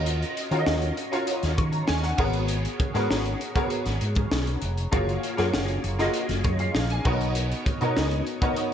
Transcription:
0.00 0.23 D#2 loud
0.00 0.40 C#4 medium
0.00 0.40 F4 medium
0.00 0.40 F#4 medium
0.00 0.40 A#4 medium
0.00 0.40 D#5 loud
0.06 closed hi-hat loud
0.22 closed hi-hat medium
0.37 closed hi-hat medium
0.51 0.63 D#3 medium
0.51 1.03 C#4 medium
0.51 1.03 F4 medium
0.51 1.03 F#4 medium
0.51 1.03 A#4 medium
0.51 0.58 C#5 medium
0.51 closed hi-hat soft
0.59 1.07 D#5 loud
0.66 0.90 D#2 medium
0.66 snare loud
0.82 closed hi-hat medium
0.97 closed hi-hat medium
1.12 2.15 C#4 medium
1.12 2.15 F4 medium
1.12 2.15 F#4 medium
1.12 2.15 A#4 medium
1.12 2.15 C#5 loud
1.12 closed hi-hat medium
1.27 closed hi-hat medium
1.43 1.55 D#2 medium
1.43 snare soft
1.43 closed hi-hat medium
1.58 1.82 D#3 loud
1.58 1.72 C#6 medium
1.58 kick loud
1.58 closed hi-hat medium
1.72 1.87 A#5 medium
1.72 closed hi-hat medium
1.87 2.12 D#2 loud
1.87 2.02 G#5 medium
1.87 snare loud
2.03 2.32 F#5 medium
2.03 snare soft
2.03 closed hi-hat medium
2.17 2.66 G#1 loud
2.17 2.82 B3 medium
2.17 2.82 F#4 medium
2.17 2.83 G#4 medium
2.17 2.83 A#4 medium
2.17 2.83 C#5 loud
2.17 kick loud
2.17 crash medium
2.33 closed hi-hat medium
2.48 closed hi-hat loud
2.65 closed hi-hat soft
2.80 kick loud
2.80 closed hi-hat medium
2.94 3.07 G#2 loud
2.94 3.46 B3 medium
2.94 3.46 F#4 medium
2.94 3.46 G#4 medium
2.94 3.46 A#4 medium
2.94 3.46 C#5 medium
2.94 snare soft
2.94 closed hi-hat soft
3.10 3.34 G#1 medium
3.10 snare loud
3.26 closed hi-hat medium
3.41 closed hi-hat medium
3.55 4.58 B3 medium
3.55 4.58 F#4 medium
3.55 4.58 G#4 medium
3.55 4.59 A#4 medium
3.55 4.59 C#5 medium
3.55 kick loud
3.55 closed hi-hat soft
3.70 closed hi-hat medium
3.86 3.98 G#1 loud
3.86 snare soft
3.86 closed hi-hat medium
4.01 4.25 G#2 loud
4.01 closed hi-hat medium
4.15 kick loud
4.15 closed hi-hat medium
4.32 4.55 B1 medium
4.32 snare loud
4.47 closed hi-hat medium
4.62 4.85 F1 loud
4.62 closed hi-hat medium
4.77 closed hi-hat medium
4.91 5.16 F#1 loud
4.91 5.31 A#3 medium
4.91 5.31 F4 medium
4.91 5.31 F#4 medium
4.91 5.31 G#4 medium
4.91 5.31 C#5 medium
4.91 kick loud
4.91 closed hi-hat loud
5.09 closed hi-hat soft
5.23 closed hi-hat medium
5.37 5.50 F#2 medium
5.37 5.89 A#3 medium
5.37 5.89 F4 medium
5.37 5.89 F#4 medium
5.37 5.89 G#4 medium
5.37 5.90 C#5 medium
5.37 snare soft
5.37 closed hi-hat soft
5.54 5.77 F#1 medium
5.54 snare loud
5.68 closed hi-hat medium
5.84 6.07 F#1 medium
5.84 closed hi-hat medium
5.99 7.02 A#3 medium
5.99 7.02 F4 medium
5.99 7.02 F#4 medium
5.99 7.02 G#4 medium
5.99 6.45 D#5 medium
5.99 snare soft
5.99 closed hi-hat medium
6.14 closed hi-hat medium
6.29 6.41 F#1 loud
6.29 snare soft
6.29 closed hi-hat medium
6.44 6.68 F#2 medium
6.44 6.59 C#5 medium
6.44 kick loud
6.44 closed hi-hat medium
6.59 6.89 F5 medium
6.59 closed hi-hat medium
6.75 6.98 A#1 medium
6.75 snare loud
6.90 7.19 G#5 medium
6.90 closed hi-hat medium
7.05 7.52 B1 loud
7.05 7.69 B3 medium
7.05 7.69 D#4 medium
7.05 7.70 F#4 medium
7.05 7.70 A#4 medium
7.05 7.70 C#5 loud
7.05 kick loud
7.05 crash medium
7.21 closed hi-hat medium
7.35 closed hi-hat loud
7.52 closed hi-hat medium
7.66 kick medium
7.66 closed hi-hat medium
7.81 7.93 B2 medium
7.81 8.33 B3 medium
7.81 8.33 D#4 medium
7.81 8.33 F#4 medium
7.81 8.33 A#4 medium
7.81 8.33 C#5 medium
7.81 closed hi-hat soft
7.97 8.20 C#2 medium
7.97 snare loud
8.11 closed hi-hat medium
8.27 closed hi-hat medium
8.41 8.74 B3 medium
8.41 8.74 D#4 medium
8.41 8.74 F#4 medium
8.41 8.74 A#4 medium
8.41 8.74 C#5 loud
8.41 kick loud
8.41 closed hi-hat soft
8.56 closed hi-hat medium

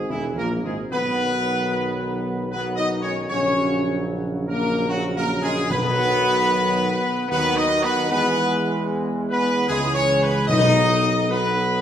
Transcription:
0.09 0.35 E1 medium
0.09 0.37 E2 medium
0.09 0.35 E3 medium
0.09 0.23 E4 medium
0.36 0.65 A#1 medium
0.36 0.49 A#2 medium
0.36 0.63 A#3 medium
0.36 0.49 A#4 medium
0.63 0.89 G#1 medium
0.63 0.77 G#2 medium
0.63 0.77 G#3 medium
0.63 0.77 G#4 medium
0.90 3.26 B1 medium
0.90 2.47 D#3 medium
0.90 2.47 F#3 medium
0.90 2.47 B3 loud
0.90 2.47 B4 loud
2.50 3.26 D#3 medium
2.50 3.26 F#3 medium
2.50 2.77 B3 medium
2.50 2.62 B4 loud
2.75 3.02 D#4 medium
2.75 2.88 D#5 loud
3.02 3.16 C#4 medium
3.02 3.15 C#5 loud
3.29 5.73 A#1 medium
3.29 4.89 C#3 medium
3.29 4.86 F#3 medium
3.29 4.07 C#4 loud
3.29 4.06 C#5 loud
4.49 4.87 A#3 medium
4.49 4.87 A#4 loud
4.89 5.67 C#3 medium
4.89 5.02 F#3 loud
4.89 5.67 F#3 medium
4.89 5.02 F#4 loud
5.16 5.28 A#3 loud
5.16 5.42 A#4 loud
5.42 5.69 G#3 loud
5.42 5.68 G#4 loud
5.70 7.14 B1 medium
5.70 6.86 B2 loud
5.70 7.13 D#3 medium
5.70 7.13 F#3 loud
5.70 7.26 B3 loud
5.70 7.26 B4 loud
7.28 7.79 D#2 medium
7.28 8.06 D#3 loud
7.28 8.06 F#3 medium
7.28 7.54 B3 loud
7.28 7.55 B4 loud
7.56 7.81 D#4 loud
7.56 7.83 D#5 loud
7.83 8.08 B3 loud
7.83 8.09 B4 loud
8.09 9.71 E2 medium
8.09 9.67 E3 loud
8.09 9.67 G#3 loud
8.09 8.86 B3 loud
8.09 8.86 B4 loud
9.30 9.67 B3 loud
9.30 9.67 B4 loud
9.68 10.49 C#2 medium
9.68 10.46 E3 medium
9.68 10.45 G#3 medium
9.68 9.83 G#3 loud
9.68 9.94 G#4 loud
9.94 10.22 C#4 medium
9.94 10.20 C#5 loud
10.22 10.37 B3 medium
10.22 10.50 B4 loud
10.47 11.81 B1 medium
10.47 11.68 B2 loud
10.47 11.29 F#3 medium
10.47 11.27 B3 medium
10.47 11.26 D#5 loud
10.52 11.28 D#4 loud
11.30 11.81 F#3 medium
11.30 11.81 B3 medium
11.30 11.81 B3 loud
11.30 11.81 B4 loud

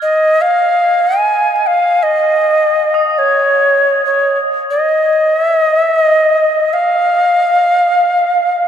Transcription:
0.00 0.43 D#5 medium
0.00 6.75 F6 soft
0.00 6.78 G#6 soft
0.41 1.19 F5 medium
1.18 1.56 G#5 medium
1.56 1.68 G#5 medium
1.67 2.04 F5 medium
2.03 3.20 D#5 medium
2.94 8.68 D#6 soft
3.18 4.04 C#5 medium
4.06 4.39 C#5 medium
4.71 5.41 D#5 medium
5.41 5.60 E5 medium
5.60 5.80 D#5 medium
5.80 5.99 E5 medium
5.99 6.75 D#5 medium
6.73 8.68 F5 medium

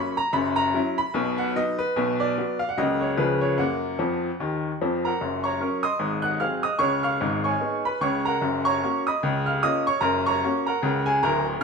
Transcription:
0.00 0.16 F#3 soft
0.00 0.17 A#3 soft
0.00 0.17 C#4 medium
0.00 0.17 B5 medium
0.17 0.34 A#5 loud
0.33 0.68 F#1 medium
0.33 0.68 F#2 medium
0.33 0.57 B5 medium
0.56 0.98 A#5 medium
0.74 0.97 F#3 medium
0.74 0.97 C#4 medium
0.74 0.97 E4 medium
0.98 1.39 B5 medium
1.14 1.49 B1 medium
1.14 1.49 B2 medium
1.38 1.55 F#5 medium
1.56 1.78 F#3 soft
1.56 1.78 B3 soft
1.56 1.79 D#4 medium
1.56 1.80 D#5 loud
1.79 2.19 B4 loud
1.96 2.31 B1 medium
1.96 2.31 B2 medium
2.20 2.60 D5 medium
2.38 2.60 F#3 soft
2.38 2.60 B3 medium
2.38 2.60 F#4 medium
2.59 2.68 F5 medium
2.69 2.77 F#5 medium
2.77 3.12 C#2 medium
2.77 3.12 C#3 medium
2.77 3.00 F#3 soft
2.77 3.00 A#3 soft
2.77 3.01 F#4 soft
2.77 3.01 D#5 medium
3.01 3.18 C#5 medium
3.17 3.52 C#2 medium
3.17 3.52 C#3 medium
3.17 3.40 F3 soft
3.17 3.40 C#4 soft
3.17 3.40 G#4 soft
3.17 3.41 B4 medium
3.41 3.58 C#5 medium
3.57 3.90 F#2 medium
3.57 3.91 A#3 medium
3.57 4.79 F#5 medium
3.99 4.29 F2 medium
3.99 4.29 F3 medium
4.40 4.70 D#2 medium
4.40 4.70 D#3 medium
4.81 5.11 F2 medium
4.81 5.11 F3 medium
5.05 5.42 A#4 soft
5.05 5.42 F#5 soft
5.05 5.44 A#5 medium
5.21 5.55 F#1 medium
5.21 5.54 F#2 medium
5.44 5.81 C#5 medium
5.44 5.81 A#5 soft
5.44 5.83 C#6 medium
5.60 5.82 F#3 soft
5.60 5.82 C#4 soft
5.60 5.83 A#4 medium
5.83 6.21 D#5 medium
5.83 6.21 C6 medium
5.83 6.23 D#6 medium
5.99 6.34 G#1 medium
5.99 6.34 G#2 medium
6.22 6.39 F#5 medium
6.22 6.39 F#6 medium
6.40 6.62 F#3 soft
6.40 6.62 C4 soft
6.40 6.63 G#4 soft
6.40 6.62 F5 medium
6.40 6.63 F6 medium
6.63 6.79 D#5 medium
6.63 6.80 D#6 medium
6.79 7.12 C#2 medium
6.79 7.12 C#3 medium
6.79 7.02 C#5 medium
6.79 7.03 C#6 medium
7.03 7.41 F5 medium
7.03 7.41 C#6 medium
7.03 7.43 F6 medium
7.21 7.53 G#1 medium
7.21 7.53 G#2 medium
7.44 7.82 C#5 medium
7.44 7.82 G#5 medium
7.44 7.84 C#6 medium
7.61 7.83 B3 soft
7.61 7.83 D#4 soft
7.61 7.83 G#4 soft
7.85 8.01 B4 medium
7.85 8.01 B5 medium
8.01 8.33 C#2 medium
8.01 8.33 C#3 medium
8.01 8.23 C#5 medium
8.01 8.24 C#6 medium
8.25 8.63 A#4 medium
8.25 8.63 F#5 medium
8.25 8.64 A#5 medium
8.41 8.75 F#1 medium
8.41 8.75 F#2 medium
8.65 9.02 C#5 medium
8.65 9.02 A#5 medium
8.65 9.05 C#6 medium
8.83 9.04 A#3 soft
8.83 9.05 C#4 soft
8.83 9.05 F#4 soft
9.07 9.44 D#5 medium
9.07 9.43 B5 medium
9.07 9.45 D#6 medium
9.23 9.56 C#2 medium
9.23 9.56 C#3 medium
9.46 9.62 F5 medium
9.46 9.62 F6 medium
9.63 9.84 A#3 soft
9.63 9.85 C#4 medium
9.63 9.85 F4 medium
9.63 9.84 D#5 medium
9.63 9.85 D#6 medium
9.87 10.02 C#5 medium
9.87 10.02 C#6 medium
10.01 10.35 F#1 medium
10.01 10.35 F#2 medium
10.01 10.24 A#4 medium
10.01 10.24 A#5 medium
10.26 10.64 C#5 medium
10.26 10.64 A#5 medium
10.26 10.65 C#6 medium
10.44 10.66 A#3 soft
10.44 10.66 C#4 medium
10.44 10.66 F#4 medium
10.66 11.04 A#4 medium
10.66 11.04 F#5 medium
10.66 11.06 A#5 medium
10.83 11.16 C#2 medium
10.83 11.16 C#3 medium
11.06 11.21 G#4 medium
11.06 11.22 G#5 medium
11.23 11.54 D1 medium
11.23 11.55 D2 medium
11.23 11.45 A#4 medium
11.23 11.45 A#5 medium

